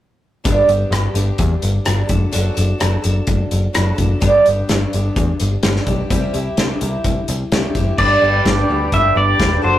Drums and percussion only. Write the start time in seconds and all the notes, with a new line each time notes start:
0.45 kick, closed hi-hat
0.69 closed hi-hat
0.92 cross-stick, closed hi-hat
1.15 closed hi-hat
1.38 kick, closed hi-hat
1.62 closed hi-hat
1.86 cross-stick, closed hi-hat
2.09 kick, closed hi-hat
2.33 closed hi-hat
2.57 closed hi-hat
2.80 cross-stick, closed hi-hat
3.04 closed hi-hat
3.27 kick, closed hi-hat
3.51 closed hi-hat
3.75 cross-stick, closed hi-hat
3.98 kick, closed hi-hat
4.22 kick, closed hi-hat
4.46 closed hi-hat
4.69 snare, closed hi-hat
4.93 closed hi-hat
5.16 kick, closed hi-hat
5.40 closed hi-hat
5.63 snare, closed hi-hat
5.76 snare
5.87 kick, closed hi-hat
6.10 kick, closed hi-hat
6.34 closed hi-hat
6.57 snare, closed hi-hat
6.81 closed hi-hat
7.04 kick, closed hi-hat
7.28 closed hi-hat
7.52 snare, closed hi-hat
7.75 kick, closed hi-hat
7.98 kick, crash
8.45 kick, snare, closed hi-hat
8.92 kick, closed hi-hat
9.40 kick, snare, closed hi-hat